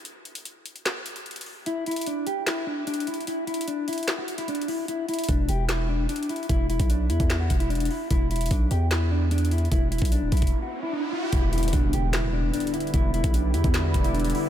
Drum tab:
HH |x-----------x-----x-----x-----------x-----x-----x-----------x-----x-----x--x--x--x--o-----------|x-----------x--x--x--x--x-----------x-----------x-----------------------x---x---x---x---x---x---|x-----------x---x---x---x-----------x--x--x--x--x-----------x-----x-----x---x---x---o-----------|x-----------x--x--x--x--x-----------x-----------x-----------------------x---x---x---x---x---x---|
CP |------------------------------------------------x-----------------------------------------------|------------------------------------------------x-----------------------------------------------|------------------------------------------------x-----------------------------------------------|------------------------------------------------x-----------------------------------------------|
SD |------------------------------------------------o-----------------------------------------------|------------------------------------------------o-----------------------------------------------|------------------------------------------------o-----------------------------------------------|------------------------------------------------o-----------------------------------------------|
BD |------------------------------------------------------------------------------------------------|------------------------------------------------------------------------------------------------|------------------------------------------------------------------------------------------------|------------------------o-----------------------------------------------------------------------|

HH |x-----------x-----x-----x-----------x-----x-----x-----------x-----x-----x--x--x--x--o-----------|x-----------x--x--x--x--x-----------x-----------x-----------------------x---x---x---x---x---x---|x-----------x---x---x---x-----------x--x--x--x--------------------------------------------------|x-----------x--x--x--x--x-----------x-----------x-----------------------x---x---x---x---x---x---|
CP |------------------------------------------------x-----------------------------------------------|------------------------------------------------x-----------------------------------------------|------------------------------------------------------------------------------------------------|------------------------------------------------x-----------------------------------------------|
SD |------------------------------------------------o-----------------------------------------------|------------------------------------------------o-----------------------------------------------|------------------------------------------------------------------------------------------------|------------------------------------------------o-----------------------------------------------|
BD |o-----------------o-----------------------o-----------------o-----------------------------------|o-----------------------o-----------------------------------------------------------------------|o-----------------o-----------------o-----o-----------------------------------------------------|o-----------------------o-----------------------------------------------------------------------|

HH |x-----------x-----x-----x-----------x-----x-----x-----------x-----x-----x--x--x--x--o-----------|
CP |------------------------------------------------x-----------------------------------------------|
SD |------------------------------------------------o-----------------------------------------------|
BD |o-----------------o-----------------------o-----------------o-----------------------------------|